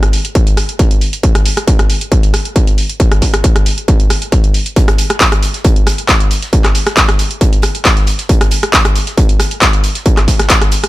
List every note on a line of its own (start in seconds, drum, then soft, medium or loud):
0.03 cross-stick medium
0.03 closed hi-hat medium
0.13 open hi-hat loud
0.25 closed hi-hat medium
0.35 kick loud
0.35 closed hi-hat medium
0.47 closed hi-hat medium
0.57 cross-stick medium
0.57 open hi-hat loud
0.69 closed hi-hat medium
0.79 kick loud
0.79 closed hi-hat medium
0.91 closed hi-hat medium
1.01 open hi-hat medium
1.13 closed hi-hat medium
1.23 kick loud
1.23 closed hi-hat medium
1.35 cross-stick medium
1.35 closed hi-hat medium
1.46 open hi-hat loud
1.57 cross-stick medium
1.57 closed hi-hat medium
1.68 kick loud
1.68 closed hi-hat medium
1.79 cross-stick medium
1.79 closed hi-hat medium
1.90 open hi-hat loud
2.01 closed hi-hat medium
2.12 kick loud
2.12 closed hi-hat medium
2.23 closed hi-hat medium
2.34 cross-stick medium
2.34 open hi-hat loud
2.45 closed hi-hat medium
2.56 kick loud
2.56 closed hi-hat medium
2.67 closed hi-hat medium
2.78 open hi-hat loud
2.89 closed hi-hat medium
3.00 kick loud
3.00 closed hi-hat medium
3.12 cross-stick medium
3.12 closed hi-hat medium
3.22 kick medium
3.22 open hi-hat loud
3.34 cross-stick loud
3.34 closed hi-hat medium
3.44 kick loud
3.44 closed hi-hat medium
3.56 cross-stick medium
3.56 closed hi-hat medium
3.66 open hi-hat loud
3.78 closed hi-hat medium
3.88 kick loud
3.88 closed hi-hat medium
4.00 closed hi-hat soft
4.10 cross-stick medium
4.10 open hi-hat loud
4.22 closed hi-hat medium
4.32 kick loud
4.32 closed hi-hat medium
4.44 closed hi-hat soft
4.54 open hi-hat medium
4.66 closed hi-hat medium
4.76 kick loud
4.76 closed hi-hat medium
4.88 cross-stick loud
4.88 closed hi-hat soft
4.98 closed hi-hat medium
4.98 open hi-hat loud
5.10 cross-stick loud
5.10 closed hi-hat medium
5.20 kick loud
5.20 snare loud
5.20 clap loud
5.20 closed hi-hat medium
5.32 cross-stick medium
5.32 closed hi-hat soft
5.42 closed hi-hat medium
5.42 open hi-hat loud
5.54 snare soft
5.54 closed hi-hat medium
5.64 kick loud
5.64 closed hi-hat medium
5.76 closed hi-hat soft
5.87 cross-stick medium
5.87 snare soft
5.87 closed hi-hat medium
5.87 open hi-hat loud
5.98 closed hi-hat medium
6.09 kick loud
6.09 snare loud
6.09 clap loud
6.09 closed hi-hat medium
6.20 closed hi-hat soft
6.31 closed hi-hat medium
6.31 open hi-hat medium
6.42 snare soft
6.42 closed hi-hat medium
6.53 kick loud
6.53 closed hi-hat medium
6.64 cross-stick loud
6.64 clap soft
6.64 closed hi-hat medium
6.75 snare soft
6.75 closed hi-hat medium
6.75 open hi-hat loud
6.86 cross-stick loud
6.86 snare medium
6.86 closed hi-hat medium
6.97 kick loud
6.97 snare loud
6.97 clap loud
6.97 closed hi-hat medium
7.08 cross-stick loud
7.08 snare medium
7.08 closed hi-hat soft
7.19 closed hi-hat medium
7.19 open hi-hat loud
7.31 closed hi-hat medium
7.41 kick loud
7.41 closed hi-hat loud
7.41 closed hi-hat medium
7.53 closed hi-hat soft
7.62 cross-stick medium
7.62 closed hi-hat medium
7.62 open hi-hat loud
7.75 closed hi-hat soft
7.84 kick loud
7.84 snare loud
7.84 clap loud
7.84 closed hi-hat medium
7.97 snare medium
7.97 closed hi-hat soft
8.07 closed hi-hat medium
8.07 open hi-hat medium
8.18 snare medium
8.18 closed hi-hat medium
8.29 kick loud
8.29 closed hi-hat medium
8.41 cross-stick loud
8.41 closed hi-hat medium
8.41 closed hi-hat soft
8.51 closed hi-hat medium
8.51 open hi-hat loud
8.63 cross-stick medium
8.63 closed hi-hat medium
8.73 kick loud
8.73 snare loud
8.73 clap loud
8.73 closed hi-hat medium
8.85 cross-stick medium
8.85 closed hi-hat soft
8.85 closed hi-hat medium
8.95 closed hi-hat medium
8.95 open hi-hat medium
9.07 snare soft
9.07 closed hi-hat medium
9.18 kick loud
9.18 closed hi-hat medium
9.29 closed hi-hat medium
9.39 cross-stick medium
9.39 snare soft
9.39 closed hi-hat medium
9.39 open hi-hat loud
9.51 closed hi-hat medium
9.61 kick loud
9.61 snare loud
9.61 clap loud
9.61 closed hi-hat medium
9.73 closed hi-hat soft
9.84 closed hi-hat medium
9.84 open hi-hat medium
9.95 snare soft
9.95 closed hi-hat medium
10.06 kick loud
10.06 closed hi-hat medium
10.17 cross-stick medium
10.17 clap soft
10.17 closed hi-hat medium
10.28 kick medium
10.28 snare soft
10.28 closed hi-hat medium
10.28 open hi-hat loud
10.39 cross-stick medium
10.39 snare medium
10.39 closed hi-hat medium
10.50 kick loud
10.50 snare loud
10.50 clap loud
10.50 closed hi-hat medium
10.50 closed hi-hat loud
10.61 cross-stick medium
10.61 snare medium
10.61 closed hi-hat soft
10.72 closed hi-hat medium
10.72 open hi-hat medium
10.84 cross-stick medium
10.84 closed hi-hat medium